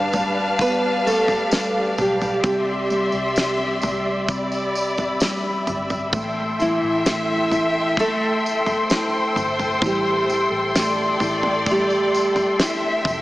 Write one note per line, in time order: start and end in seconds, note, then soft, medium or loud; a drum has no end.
0.00 1.93 G1 medium
0.00 0.13 G3 medium
0.00 0.57 D4 medium
0.00 6.08 G4 medium
0.00 2.40 B4 medium
0.00 0.56 D5 medium
0.00 6.08 D5 medium
0.00 2.40 F5 loud
0.00 2.40 A5 medium
0.13 0.57 G3 medium
0.13 floor tom medium
0.13 tambourine medium
0.59 1.50 G3 medium
0.59 1.02 B3 loud
0.59 1.07 B4 loud
0.59 kick medium
0.59 tambourine medium
1.06 1.94 A3 medium
1.06 2.01 A4 loud
1.06 tambourine medium
1.28 floor tom medium
1.28 tambourine soft
1.51 2.41 G3 medium
1.51 snare loud
1.51 tambourine medium
1.98 2.41 B1 medium
1.98 2.42 G3 medium
1.98 2.42 G4 medium
1.98 floor tom medium
1.98 tambourine soft
2.21 floor tom medium
2.21 tambourine soft
2.43 3.09 C2 loud
2.43 3.35 C3 medium
2.43 4.25 G3 medium
2.43 4.25 G4 medium
2.43 4.28 E5 loud
2.43 13.22 E5 medium
2.43 4.27 C6 medium
2.43 kick loud
2.43 floor tom loud
2.43 tambourine soft
2.90 3.81 G3 medium
2.90 tambourine soft
3.12 3.78 C2 medium
3.12 tambourine soft
3.36 4.27 C3 medium
3.36 snare loud
3.36 tambourine medium
3.82 5.63 C2 medium
3.82 5.19 G3 medium
3.82 floor tom medium
3.82 tambourine soft
4.27 6.09 C3 medium
4.27 5.66 D5 loud
4.27 6.11 B5 medium
4.27 kick loud
4.27 tambourine soft
4.52 tambourine soft
4.75 tambourine medium
4.97 floor tom medium
4.97 tambourine soft
5.20 6.10 G3 medium
5.20 snare loud
5.20 tambourine medium
5.67 6.10 G1 medium
5.67 floor tom medium
5.67 tambourine soft
5.90 floor tom medium
5.90 tambourine soft
6.12 6.78 A1 loud
6.12 7.03 A3 medium
6.12 13.22 A4 medium
6.12 8.85 E5 loud
6.12 13.22 G5 medium
6.12 13.22 C6 loud
6.12 kick medium
6.12 floor tom loud
6.12 tambourine medium
6.59 7.94 E3 medium
6.59 7.50 E4 medium
6.59 8.02 E4 medium
6.59 tambourine soft
6.83 9.32 A1 medium
7.05 7.96 A3 medium
7.05 snare loud
7.05 tambourine medium
7.51 8.88 E4 medium
7.51 floor tom medium
7.51 tambourine soft
7.97 9.78 A3 medium
7.97 9.79 A3 medium
7.97 9.85 A4 loud
7.97 kick medium
7.97 tambourine soft
8.46 tambourine medium
8.66 floor tom medium
8.66 tambourine soft
8.89 10.27 E4 medium
8.89 10.74 C5 loud
8.89 snare loud
8.89 tambourine medium
9.36 9.78 G1 medium
9.36 floor tom medium
9.36 tambourine medium
9.59 floor tom medium
9.59 tambourine soft
9.82 10.47 A1 loud
9.82 13.22 E3 medium
9.82 11.64 G3 medium
9.82 kick loud
9.82 floor tom medium
9.82 tambourine soft
9.86 11.64 G4 loud
10.28 11.19 E4 medium
10.28 tambourine soft
10.51 11.16 A1 medium
10.74 11.65 A3 medium
10.74 12.59 D5 loud
10.74 snare loud
10.74 tambourine medium
11.20 13.01 A1 loud
11.20 12.57 E4 medium
11.20 floor tom medium
11.20 tambourine soft
11.43 floor tom medium
11.66 13.22 A3 medium
11.66 kick medium
11.66 tambourine soft
11.71 12.57 G3 medium
11.71 12.57 G4 medium
11.90 tambourine soft
12.14 tambourine medium
12.36 floor tom medium
12.36 tambourine soft
12.59 13.22 E4 medium
12.59 13.22 E5 loud
12.59 snare loud
12.59 tambourine medium
13.05 13.22 F1 loud
13.05 kick loud
13.05 floor tom medium
13.05 tambourine soft